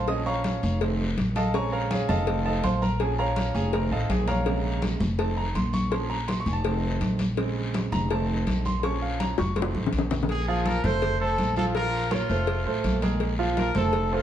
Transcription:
Already playing: upright bass A#1
0.08 grand piano F3 A#3 C#4 D#5 D#6, cowbell, high conga, long guiro
0.26 grand piano C#5 F5 A#5 C#6, high conga
0.44 cowbell, high conga, short guiro
0.63 upright bass F1, high conga, short guiro
0.81 grand piano D#3 A3 C4, cowbell, high conga, long guiro
0.99 high conga
1.17 upright bass A#1, cowbell, high conga, short guiro
1.36 grand piano A4 D#5 F5 A5, cowbell, high conga, short guiro
1.54 grand piano C#3 G#3 C4 C#5 G#5 A#5 C#6, cowbell, high conga, long guiro
1.72 grand piano A#4 C#5 F5 A#5, high conga
1.91 grand piano G#4 C#5 F5 G#5, cowbell, high conga, short guiro
2.09 upright bass F1, grand piano A4 D#5 F5 A5, high conga, low conga, short guiro
2.27 grand piano D#3 A3 C4, cowbell, high conga, long guiro
2.45 grand piano A4 D#5 F5 A5, high conga
2.63 upright bass A#1, grand piano C5 F5 A5 C6, cowbell, high conga, short guiro
2.82 grand piano A#4 A#5, high conga, short guiro
3.00 grand piano F3 A#3 C#4 G#4 G#5, cowbell, high conga, long guiro
3.19 grand piano A#4 C#5 F5 A#5, high conga
3.36 cowbell, high conga, short guiro
3.54 upright bass F1, grand piano G#4 G#5, short guiro
3.73 grand piano D#3 A3 C4 A#4 A#5, cowbell, high conga, long guiro
3.91 upright bass A1, grand piano A4 D#5 F5 A5, high conga
4.09 upright bass A#1, grand piano G#4 G#5, cowbell, high conga, short guiro
4.27 grand piano A#4 C#5 F5 A#5, cowbell, high conga, short guiro
4.45 grand piano C3 C#3 G#3, cowbell, high conga, long guiro
4.64 high conga
4.82 cowbell, high conga, short guiro
5.00 upright bass F1, high conga, low conga, short guiro
5.18 grand piano D#3 A3 C4 A5, cowbell, high conga, long guiro
5.37 grand piano A#5, high conga
5.55 upright bass A#1, grand piano C6, cowbell, high conga, short guiro
5.73 grand piano C#6, high conga, short guiro
5.91 grand piano F3 A#3 C#4 C6, cowbell, high conga, long guiro
6.10 grand piano A#5, high conga
6.28 grand piano C6, cowbell, high conga, short guiro
6.40 grand piano C#6
6.46 upright bass F1, grand piano G#5, high conga, short guiro
6.53 grand piano A5
6.64 grand piano D#3 A3 C4, cowbell, high conga, long guiro
6.84 high conga
7.00 upright bass A#1, cowbell, high conga, short guiro
7.19 cowbell, high conga, short guiro
7.37 grand piano C#3 G#3 C4, cowbell, high conga, long guiro
7.56 high conga
7.74 cowbell, high conga, short guiro
7.92 upright bass F1, grand piano A#5, high conga, low conga, short guiro
8.10 grand piano D#3 A3 C4 A5, cowbell, high conga, long guiro
8.29 high conga
8.47 upright bass A#1, cowbell, high conga, short guiro
8.65 grand piano C6, high conga, short guiro
8.80 grand piano F3 C6, cowbell, long guiro
8.84 grand piano A#3 C#4 C#6, high conga
9.02 grand piano F5, high conga
9.20 grand piano A#5, cowbell, high conga, short guiro
9.38 upright bass F1, grand piano C#6, high bongo, high conga, short guiro
9.56 grand piano D#3 A3 C4 C6, cowbell, high conga, long guiro
9.62 high bongo
9.75 upright bass A1, high conga
9.86 low bongo
9.92 upright bass A#1, cowbell, short guiro
9.98 low bongo
10.11 cowbell, low bongo, low conga, short guiro
10.23 low bongo
10.29 trumpet G#4, cowbell, high conga, long guiro
10.48 grand piano F3 F4 F5, trumpet G#4, high conga
10.66 trumpet A#4, cowbell, high conga, short guiro
10.84 upright bass F1, grand piano A3 A4 C5, trumpet C5, high conga, low conga, short guiro
11.02 cowbell, high conga, low conga, long guiro
11.20 grand piano A3 A4 C5, trumpet A4, high conga
11.38 upright bass A#1, cowbell, high conga, short guiro
11.56 grand piano F3 F4 F5, trumpet A4, high conga, short guiro
11.75 grand piano F3 F4 F5, trumpet A#4, cowbell, high conga, long guiro
11.93 high conga
12.11 grand piano A#3 A#4 C#5, trumpet F4, cowbell, high conga, short guiro
12.29 upright bass F1, grand piano A3 A4 C5, high conga, short guiro
12.47 cowbell, high conga, long guiro
12.66 upright bass A1, grand piano A3 A4 C5, high conga
12.84 upright bass A#1, cowbell, high conga, short guiro
13.02 grand piano G#3 G#4 A#4, cowbell, high conga, short guiro
13.20 cowbell, high conga, long guiro
13.39 grand piano F3 F4 F5, high conga
13.57 trumpet A#4, cowbell, high conga, short guiro
13.75 upright bass F1, grand piano A3 A4 C5, trumpet A4, high conga, low conga, short guiro
13.93 cowbell, high conga, long guiro
14.11 grand piano A3 A4 C5, trumpet F4, high conga

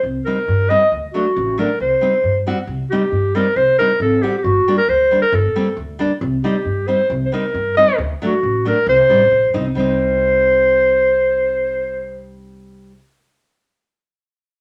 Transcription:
0.03 upright bass C2
0.25 nylon-string guitar G3 C4 D#4, clarinet A#4
0.48 upright bass G2
0.69 nylon-string guitar G3 C4 D#4, clarinet D#5
0.92 upright bass D2
1.14 nylon-string guitar F#3 A3 D4, clarinet F#4
1.36 upright bass A1
1.58 nylon-string guitar F#3 A3 D4, clarinet A#4
1.80 upright bass C2, clarinet C5
2.01 nylon-string guitar G3 C4 D#4
2.24 upright bass G2
2.47 nylon-string guitar G3 C4 F#4
2.67 upright bass C2
2.90 nylon-string guitar G3 C4 D#4, clarinet G4
3.12 upright bass G2
3.35 nylon-string guitar G3 C4 D#4, clarinet A#4
3.56 upright bass C2, clarinet C5
3.78 nylon-string guitar G3 C4 D#4, clarinet A#4
4.00 upright bass G#1, clarinet A4
4.22 nylon-string guitar G3 C4 F#4, clarinet G4
4.38 clarinet G4
4.44 upright bass G1, clarinet F#4
4.68 nylon-string guitar G3 A#3 D4
4.78 clarinet A#4
4.88 upright bass D2, clarinet C5
5.11 nylon-string guitar G3 A#3 D4
5.22 clarinet A#4
5.32 upright bass G1, clarinet A4
5.56 nylon-string guitar G3 A#3 C4
5.77 upright bass D2
5.99 nylon-string guitar G3 A#3 D4
6.21 upright bass C2
6.44 nylon-string guitar G3 C4 D#4, clarinet G4
6.65 upright bass G2
6.88 nylon-string guitar G3 C4 D#4, clarinet C5
7.10 upright bass C2
7.25 clarinet C5
7.32 nylon-string guitar G3 C4 D#4, clarinet A#4
7.54 upright bass G2
7.77 nylon-string guitar G3 C4 D#4, clarinet D#5
7.98 upright bass D2
8.22 nylon-string guitar F#3 A3 D4, clarinet F#4
8.43 upright bass A1
8.65 nylon-string guitar F#3 A3 D4, clarinet A#4
8.87 upright bass C2, clarinet C5
9.09 upright bass A1, nylon-string guitar G3 C4 D#4
9.31 upright bass A#1
9.54 upright bass C2, nylon-string guitar G3 C4 D#4
9.75 upright bass C2, nylon-string guitar G3 C4, clarinet C5
9.79 nylon-string guitar D#4

